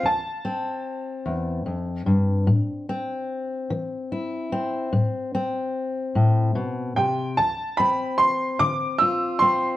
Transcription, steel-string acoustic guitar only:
\new Staff \with { instrumentName = "Steel-string acoustic guitar" } { \clef bass \time 6/8 \key d \dorian \tempo 4. = 49 << { r8 c'2~ c'8 | r8 c'4. e'8 c'8 | r8 c'2~ c'8 | r8 c'4. f'8 c'8 | } \\ { d,4 r8 e,8 f,8 g,8 | a,4 r8 e4 r8 | a,4 r8 a,8 b,8 c8 | d,4 r8 d4 r8 | } >> }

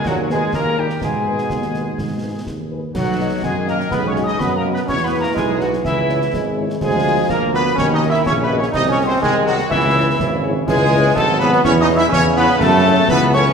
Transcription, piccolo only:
\new Staff \with { instrumentName = "Piccolo" } { \time 2/4 \key gis \minor \tempo 4 = 124 fis''8 gis''8 ais''8 g''8 | gis''2~ | gis''4 r4 | fis''4 gis''8 ais''8 |
\tuplet 3/2 { b''8 cis'''8 dis'''8 b''8 ais''8 b''8 } | \tuplet 3/2 { cis'''8 b''8 ais''8 } gis''8 fis''8 | e''4. r8 | gis''4 ais''8 b''8 |
\tuplet 3/2 { cis'''8 dis'''8 e'''8 cis'''8 b''8 cis'''8 } | \tuplet 3/2 { dis'''8 cis'''8 bis''8 } gis''8 fis''8 | e''4. r8 | \key cis \minor gis''4 a''8 b''8 |
\tuplet 3/2 { cis'''8 dis'''8 e'''8 } cis'''8 b''8 | a''4 b''8 cis'''8 | }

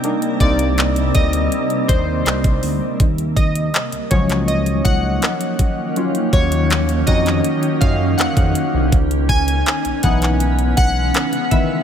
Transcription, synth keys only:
\new Staff \with { instrumentName = "Synth keys" } { \time 4/4 \key dis \phrygian \tempo 4 = 81 << { r8 d''4 ees''4 c''8 c''8. r16 | r8 dis''4 cis''8 dis''8 fis''4 r8 | r8 cis''4 dis''4 eis''8 fis''8. r16 | r8 gis''4 fis''8 r8 fis''4 e''8 | } \\ { <bes d' ees'>8 <bes c' ees'>2.~ <bes c' ees'>8 | r4. <eis fis cis'>2~ <eis fis cis'>8 | <fis cis' eis'>8 r4 <cis' dis' fis'>2~ <cis' dis' fis'>8 | r4. <e b dis'>4. r8 <dis e b>8 | } >> }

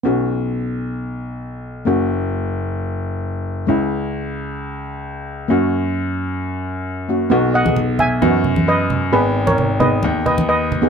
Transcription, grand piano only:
\new Staff \with { instrumentName = "Grand piano" } { \clef bass \time 4/4 \key b \major \tempo 4 = 132 b,,1 | fis,,1 | cis,1 | fis,1 |
b,,2 fis,2 | gis,,2 dis,2 | }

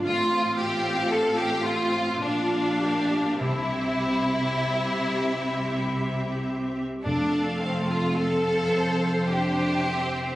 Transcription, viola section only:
\new Staff \with { instrumentName = "Viola section" } { \time 3/4 \key f \major \tempo 4 = 53 << { f'2 f'8 g'8 | g'2. | a'4 a'8 c''4. | } \\ { c'2 d'4 | c'2. | a4 c'4 d'8 c'8 | } >> }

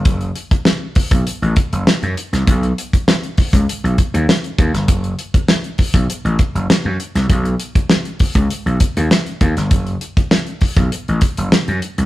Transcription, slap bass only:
\new Staff \with { instrumentName = "Slap bass" } { \clef bass \time 4/4 \key b \mixolydian \tempo 4 = 100 fis,,8 r4 r16 b,,16 r16 a,,16 r16 fis,,16 r16 fis,16 r16 bis,,16 | b,,8 r4 r16 cis,16 r16 b,,16 r16 dis,16 r8 dis,16 g,,16 | fis,,8 r4 r16 b,,16 r16 a,,16 r16 fis,,16 r16 fis,16 r16 bis,,16 | b,,8 r4 r16 cis,16 r16 b,,16 r16 dis,16 r8 dis,16 g,,16 |
fis,,8 r4 r16 b,,16 r16 a,,16 r16 fis,,16 r16 fis,16 r16 bis,,16 | }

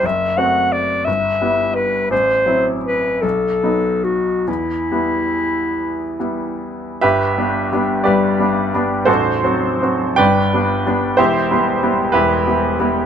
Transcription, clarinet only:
\new Staff \with { instrumentName = "Clarinet" } { \time 6/8 \key e \minor \tempo 4. = 58 e''8 fis''8 d''8 e''4 b'8 | c''4 b'8 a'4 fis'8 | e'2~ e'8 r8 | \key g \major r2. |
r2. | r2. | }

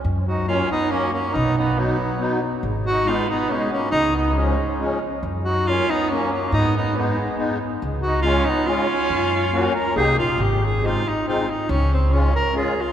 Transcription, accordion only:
\new Staff \with { instrumentName = "Accordion" } { \time 3/4 \key fis \major \tempo 4 = 139 r4 <fis ais cis'>8 r8 <fis ais cis'>8 r8 | r4 <fis b dis'>8 r8 <fis b dis'>8 r8 | r4 <gis b dis'>8 r8 <gis b dis'>8 r8 | r4 <eis gis cis'>8 r8 <eis gis cis'>8 r8 |
r4 <fis ais cis'>8 r8 <fis ais cis'>8 r8 | r4 <gis b dis'>8 r8 <gis b dis'>8 r8 | r4 <gis cis' eis'>8 r8 <gis cis' eis'>8 r8 | r4 <ais cis' fis'>8 r8 <ais dis' g'>8 r8 |
\key aes \major r4 <aes c' ees'>8 r8 <aes c' ees'>8 r8 | r4 <aes des' f'>8 r8 <aes des' f'>8 r8 | }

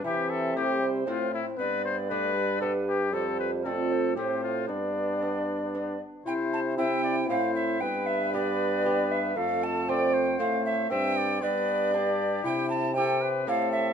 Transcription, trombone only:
\new Staff \with { instrumentName = "Trombone" } { \clef bass \time 3/4 \key c \major \tempo 4 = 116 c2 a,4 | g,2. | f,2 a,4 | g,2~ g,8 r8 |
c2 a,4 | g,2. | f,2 a,4 | g,4 g,2 |
c2 a,4 | }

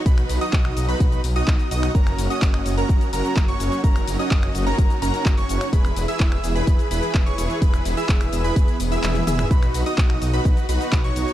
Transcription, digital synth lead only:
\new Staff \with { instrumentName = "Digital synth lead" } { \time 4/4 \key b \major \tempo 4 = 127 b''8. dis'''4 b''8. r16 dis'''8. dis'''8 | ais''8. dis'''4 ais''8. ais''8. cis'''8. | ais''8. dis'''4 ais''8. ais''8. cis'''8. | b''8. e'''4 b''8. b''8. cis'''8. |
b''8. e'''4 b''8. r16 e'''8. e'''8 | b''8. dis'''4 b''8. b''8. cis'''8. | }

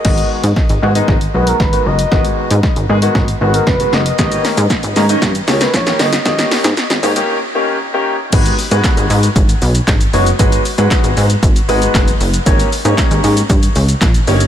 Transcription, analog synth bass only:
\new Staff \with { instrumentName = "Analog synth bass" } { \clef bass \time 4/4 \key gis \minor \tempo 4 = 116 gis,,8 r16 gis,16 r16 gis,,16 gis,8 gis,,8 b,,8 gis,,8 fis,,8 | gis,,8 r16 gis,16 r16 gis,,16 gis,8 gis,,8 gis,,8 fis,,8 fis,,8 | gis,,8 r16 gis,16 r16 gis,,16 gis,8 g,8 cis,8 ais,,8 g,,8 | gis,,8 r16 gis,16 r16 gis,,16 gis,8 r2 |
gis,,8 r16 gis,16 r16 gis,,16 gis,8 gis,,8 b,,8 gis,,8 fis,,8 | gis,,8 r16 gis,16 r16 gis,,16 gis,8 gis,,8 gis,,8 fis,,8 fis,,8 | gis,,8 r16 gis,16 r16 gis,,16 gis,8 g,8 cis,8 ais,,8 g,,8 | }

